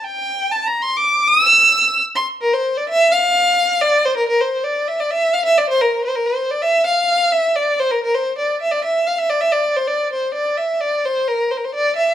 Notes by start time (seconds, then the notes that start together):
0.04 G5
0.51 A5
0.67 A#5
0.82 C6
0.96 D6
1.27 D#6
1.44 E6
2.15 C6
2.41 A#4
2.53 C5
2.77 D5
2.89 E5
3.11 F5
3.81 D5
4.05 C5
4.17 A#4
4.28 A#4
4.40 C5
4.64 D5
4.88 E5
5.00 D5
5.10 E5
5.33 F5
5.45 E5
5.58 D5
5.69 C5
5.81 A#4
6.04 C5
6.15 A#4
6.26 C5
6.51 D5
6.62 E5
6.86 F5
7.32 E5
7.56 D5
7.80 C5
7.91 A#4
8.03 A#4
8.15 C5
8.38 D5
8.61 E5
8.71 D5
8.84 E5
9.07 F5
9.18 E5
9.30 D5
9.41 E5
9.52 D5
9.76 C5
9.87 D5
10.12 C5
10.34 D5
10.57 E5
10.80 D5
11.05 C5
11.28 A#4
11.51 C5
11.57 A#4
11.64 C5
11.74 D5
11.96 E5